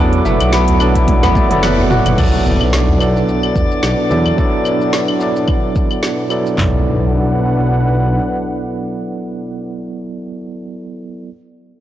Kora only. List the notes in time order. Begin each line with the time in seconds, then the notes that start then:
Already playing: A3 B3 D4 E4
0.25 A3
0.53 B3
0.80 D4
0.95 E4
1.23 B3
1.50 B3
1.63 B4
1.90 F#4